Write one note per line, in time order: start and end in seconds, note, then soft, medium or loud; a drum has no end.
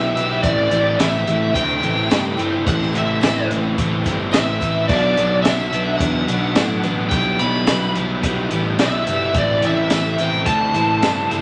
0.00 0.11 B1 loud
0.00 0.14 B2 medium
0.00 0.15 E3 medium
0.00 0.15 B3 loud
0.00 0.16 E4 loud
0.00 4.85 E4 medium
0.00 0.16 G4 loud
0.00 0.40 B4 medium
0.00 0.42 E5 medium
0.00 4.84 G5 medium
0.00 0.40 B5 medium
0.00 tambourine soft
0.15 0.40 B1 medium
0.15 0.42 B2 medium
0.15 0.43 E3 medium
0.15 0.42 B3 medium
0.15 0.43 E4 loud
0.15 0.45 G4 loud
0.15 closed hi-hat medium
0.15 tambourine medium
0.31 tambourine soft
0.42 0.68 A1 loud
0.42 0.71 A2 loud
0.42 0.71 E3 loud
0.42 0.72 A3 loud
0.42 0.71 C4 loud
0.42 0.72 E4 loud
0.42 4.85 A4 medium
0.42 0.95 D5 loud
0.42 4.85 C6 medium
0.42 kick loud
0.42 closed hi-hat loud
0.71 0.96 A1 loud
0.71 0.99 A2 medium
0.71 0.98 E3 medium
0.71 0.99 A3 medium
0.71 0.99 C4 medium
0.71 0.99 E4 loud
0.71 closed hi-hat medium
0.71 tambourine medium
0.99 1.23 A1 loud
0.99 1.26 A2 medium
0.99 1.27 E3 loud
0.99 1.27 A3 loud
0.99 1.28 C4 loud
0.99 1.27 E4 loud
0.99 1.51 E5 medium
0.99 snare loud
0.99 closed hi-hat loud
0.99 tambourine medium
0.99 tambourine loud
1.13 tambourine medium
1.27 1.51 A1 loud
1.27 1.53 A2 medium
1.27 1.53 E3 medium
1.27 1.54 A3 medium
1.27 1.54 C4 medium
1.27 1.54 E4 medium
1.27 closed hi-hat medium
1.54 1.79 D2 loud
1.54 1.81 A2 loud
1.54 1.81 E3 medium
1.54 1.81 A3 loud
1.54 1.81 C4 loud
1.54 1.82 E4 loud
1.54 2.62 G5 loud
1.54 kick medium
1.54 closed hi-hat loud
1.69 tambourine soft
1.82 2.07 A1 medium
1.82 2.08 A2 medium
1.82 2.09 E3 medium
1.82 2.10 A3 medium
1.82 2.10 C4 medium
1.82 2.10 E4 medium
1.82 closed hi-hat medium
1.82 tambourine medium
1.96 tambourine soft
2.10 2.35 G2 medium
2.10 2.36 A2 loud
2.10 2.37 E3 loud
2.10 2.37 A3 loud
2.10 2.37 C4 loud
2.10 2.38 E4 loud
2.10 snare loud
2.10 closed hi-hat loud
2.10 tambourine medium
2.10 tambourine loud
2.37 2.63 G1 medium
2.37 2.64 A2 medium
2.37 2.65 E3 medium
2.37 2.65 A3 loud
2.37 2.65 C4 loud
2.37 2.66 E4 loud
2.37 closed hi-hat medium
2.37 tambourine medium
2.66 2.91 A1 loud
2.66 2.92 A2 loud
2.66 2.93 E3 loud
2.66 2.93 A3 loud
2.66 2.93 C4 medium
2.66 2.94 E4 loud
2.66 2.93 F#5 loud
2.66 kick loud
2.66 closed hi-hat loud
2.80 snare soft
2.80 tambourine soft
2.93 3.19 A1 medium
2.93 3.21 A2 medium
2.93 3.21 E3 medium
2.93 3.22 A3 medium
2.93 3.22 C4 medium
2.93 3.23 E4 medium
2.93 closed hi-hat medium
2.93 tambourine medium
2.98 3.48 E5 medium
3.21 3.47 A1 loud
3.21 3.49 A2 loud
3.21 3.49 E3 loud
3.21 3.50 A3 medium
3.21 closed hi-hat medium
3.21 tambourine loud
3.23 3.50 C4 loud
3.23 3.51 E4 loud
3.23 snare loud
3.23 tambourine loud
3.36 tambourine medium
3.50 3.74 A1 medium
3.50 3.77 A2 medium
3.50 3.77 E3 medium
3.50 3.78 A3 medium
3.50 3.78 C4 medium
3.50 3.78 E4 medium
3.50 closed hi-hat medium
3.50 tambourine soft
3.63 tambourine soft
3.78 4.02 A1 loud
3.78 4.04 A2 medium
3.78 4.05 E3 medium
3.78 4.05 A3 loud
3.78 4.05 C4 loud
3.78 4.06 E4 loud
3.78 kick loud
3.78 closed hi-hat loud
3.92 tambourine soft
4.04 4.30 G1 medium
4.04 4.33 A2 medium
4.04 4.33 E3 medium
4.04 4.33 A3 medium
4.04 4.34 C4 medium
4.04 4.34 E4 medium
4.04 kick medium
4.04 closed hi-hat medium
4.04 tambourine medium
4.18 tambourine soft
4.31 4.58 A1 medium
4.31 4.88 E5 medium
4.31 closed hi-hat loud
4.31 tambourine loud
4.34 4.61 A2 medium
4.34 4.61 E3 loud
4.34 4.62 A3 loud
4.34 4.62 C4 loud
4.34 4.62 E4 loud
4.34 snare loud
4.34 tambourine loud
4.60 4.86 A1 medium
4.60 4.88 A2 medium
4.60 4.88 E3 medium
4.60 4.88 A3 medium
4.60 4.88 C4 medium
4.60 4.88 E4 medium
4.60 kick medium
4.60 closed hi-hat medium
4.60 tambourine medium
4.88 5.14 B1 loud
4.88 5.17 B2 loud
4.88 5.16 F#3 medium
4.88 5.18 B3 loud
4.88 5.17 D4 loud
4.88 7.11 D4 medium
4.88 9.32 B4 medium
4.88 5.42 D5 medium
4.88 7.11 F#5 medium
4.88 7.10 B5 medium
4.88 kick loud
4.88 crash loud
4.88 tambourine soft
5.17 5.42 B1 medium
5.17 5.45 B2 medium
5.17 5.44 F#3 medium
5.17 5.46 B3 medium
5.17 5.45 D4 medium
5.17 closed hi-hat medium
5.17 tambourine medium
5.42 5.69 B1 loud
5.42 5.72 B2 loud
5.42 5.71 F#3 medium
5.42 5.73 B3 loud
5.42 5.72 D4 loud
5.42 5.95 E5 medium
5.42 snare loud
5.42 closed hi-hat loud
5.42 tambourine loud
5.60 tambourine medium
5.72 5.97 B1 medium
5.72 5.99 B2 medium
5.72 5.99 F#3 medium
5.72 6.00 B3 loud
5.72 6.00 D4 medium
5.72 closed hi-hat medium
5.97 6.25 E2 medium
5.97 6.27 B2 medium
5.97 6.28 F#3 medium
5.97 7.09 F#5 loud
5.97 kick loud
5.97 closed hi-hat loud
6.01 6.28 B3 loud
6.01 6.28 D4 loud
6.15 tambourine soft
6.28 6.53 B1 medium
6.28 6.55 B2 medium
6.28 6.56 F#3 medium
6.28 6.56 B3 medium
6.28 6.56 D4 medium
6.28 closed hi-hat medium
6.28 tambourine medium
6.44 tambourine soft
6.56 6.81 A2 medium
6.56 6.83 B2 loud
6.56 6.83 F#3 loud
6.56 snare loud
6.56 closed hi-hat loud
6.56 tambourine loud
6.57 6.83 B3 loud
6.57 6.84 D4 loud
6.57 tambourine loud
6.84 7.09 A1 medium
6.84 7.10 B2 medium
6.84 7.10 F#3 medium
6.84 7.10 B3 medium
6.84 7.11 D4 loud
6.84 closed hi-hat medium
6.84 tambourine medium
6.99 tambourine soft
7.09 7.36 B1 loud
7.09 7.38 B2 loud
7.09 7.39 G3 loud
7.09 7.39 B3 loud
7.09 11.42 E4 medium
7.09 7.40 E4 loud
7.09 7.39 G5 loud
7.09 11.42 G5 medium
7.09 9.32 B5 medium
7.09 kick loud
7.09 closed hi-hat medium
7.09 tambourine soft
7.39 7.64 B1 medium
7.39 7.66 B2 medium
7.39 7.67 G3 medium
7.39 7.66 B3 medium
7.39 7.67 E4 medium
7.39 7.91 B5 loud
7.39 closed hi-hat medium
7.39 tambourine medium
7.66 7.93 B1 loud
7.66 7.94 B2 loud
7.66 7.95 G3 medium
7.66 7.95 B3 medium
7.66 7.95 E4 loud
7.66 snare loud
7.66 closed hi-hat loud
7.66 tambourine loud
7.82 tambourine medium
7.95 8.20 B1 medium
7.95 8.21 B2 medium
7.95 8.22 G3 medium
7.95 8.22 B3 medium
7.95 8.23 E4 loud
7.95 closed hi-hat medium
7.95 tambourine soft
8.22 8.48 B1 loud
8.22 8.49 B2 medium
8.22 8.50 G3 medium
8.22 8.50 B3 medium
8.22 8.51 E4 medium
8.22 kick loud
8.22 closed hi-hat loud
8.38 tambourine soft
8.50 8.76 A1 medium
8.50 8.78 B2 medium
8.50 8.79 G3 medium
8.50 8.78 B3 medium
8.50 8.79 E4 medium
8.50 closed hi-hat medium
8.50 tambourine medium
8.66 tambourine soft
8.79 9.04 B1 loud
8.79 9.05 B2 medium
8.79 9.07 G3 loud
8.79 9.07 B3 loud
8.79 9.08 E4 loud
8.79 9.37 E5 medium
8.79 snare loud
8.79 closed hi-hat loud
8.79 tambourine loud
8.93 tambourine soft
9.07 9.35 G1 medium
9.07 9.33 B2 medium
9.07 9.34 G3 medium
9.07 9.34 B3 medium
9.07 9.35 E4 loud
9.07 closed hi-hat medium
9.07 tambourine medium
9.34 9.59 A1 loud
9.34 9.62 A2 loud
9.34 9.61 E3 loud
9.34 9.62 A3 loud
9.34 9.62 C4 loud
9.34 9.63 E4 loud
9.34 11.42 A4 medium
9.34 9.65 D5 loud
9.34 11.42 C6 medium
9.34 kick loud
9.34 closed hi-hat loud
9.62 9.88 A1 loud
9.62 9.89 A2 medium
9.62 9.90 E3 medium
9.62 9.90 A3 medium
9.62 9.90 C4 medium
9.62 9.91 E4 medium
9.62 closed hi-hat medium
9.62 tambourine medium
9.67 10.22 E5 loud
9.90 10.16 A1 loud
9.90 10.18 A2 medium
9.90 10.18 E3 medium
9.90 10.19 A3 loud
9.90 10.19 C4 loud
9.90 10.20 E4 loud
9.90 snare loud
9.90 closed hi-hat loud
9.90 tambourine loud
10.05 tambourine medium
10.18 10.43 A1 medium
10.18 10.45 A2 medium
10.18 10.45 E3 medium
10.18 10.46 A3 medium
10.18 10.46 C4 loud
10.18 10.46 E4 medium
10.18 10.46 G5 loud
10.18 closed hi-hat medium
10.18 tambourine soft
10.46 10.71 D2 medium
10.46 10.73 A2 medium
10.46 10.73 E3 medium
10.46 10.73 A3 loud
10.46 10.74 C4 medium
10.46 10.74 E4 loud
10.46 11.42 A5 loud
10.46 kick medium
10.46 closed hi-hat loud
10.62 tambourine soft
10.74 10.99 A1 loud
10.74 11.01 A2 medium
10.74 11.02 E3 medium
10.74 11.02 A3 loud
10.74 11.02 C4 medium
10.74 11.02 E4 medium
10.74 closed hi-hat medium
10.74 tambourine medium
10.91 tambourine soft
11.02 11.27 G2 loud
11.02 11.29 A2 medium
11.02 11.29 E3 medium
11.02 11.30 A3 loud
11.02 11.30 C4 loud
11.02 11.30 E4 loud
11.02 snare loud
11.02 closed hi-hat loud
11.02 tambourine loud
11.04 tambourine loud
11.30 11.42 G1 medium
11.30 11.42 A2 medium
11.30 11.42 E3 medium
11.30 11.42 A3 medium
11.30 11.42 C4 loud
11.30 11.42 E4 loud
11.30 closed hi-hat medium
11.30 tambourine medium